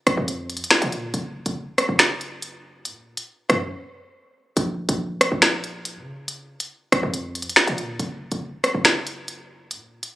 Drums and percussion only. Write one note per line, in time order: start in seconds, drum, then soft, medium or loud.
0.07 cross-stick medium
0.07 closed hi-hat medium
0.28 closed hi-hat medium
0.50 closed hi-hat medium
0.57 closed hi-hat medium
0.64 closed hi-hat medium
0.71 finger snap loud
0.71 snare loud
0.82 closed hi-hat medium
0.92 closed hi-hat medium
1.14 closed hi-hat medium
1.46 closed hi-hat medium
1.78 cross-stick medium
1.78 closed hi-hat medium
1.99 finger snap medium
1.99 snare loud
1.99 closed hi-hat medium
2.21 closed hi-hat medium
2.42 closed hi-hat medium
2.85 closed hi-hat medium
3.17 closed hi-hat medium
3.50 cross-stick medium
3.50 closed hi-hat medium
4.57 closed hi-hat medium
4.89 closed hi-hat medium
5.21 cross-stick medium
5.21 closed hi-hat medium
5.42 finger snap medium
5.42 snare loud
5.42 closed hi-hat medium
5.64 closed hi-hat medium
5.85 closed hi-hat medium
6.28 closed hi-hat medium
6.60 closed hi-hat medium
6.92 cross-stick medium
6.92 closed hi-hat medium
7.14 closed hi-hat medium
7.35 closed hi-hat medium
7.42 closed hi-hat medium
7.49 closed hi-hat medium
7.56 finger snap loud
7.56 snare loud
7.68 closed hi-hat medium
7.78 closed hi-hat medium
8.00 closed hi-hat medium
8.32 closed hi-hat medium
8.64 cross-stick medium
8.64 closed hi-hat medium
8.85 finger snap medium
8.85 snare loud
8.85 closed hi-hat medium
9.07 closed hi-hat medium
9.28 closed hi-hat medium
9.71 closed hi-hat medium
10.03 closed hi-hat medium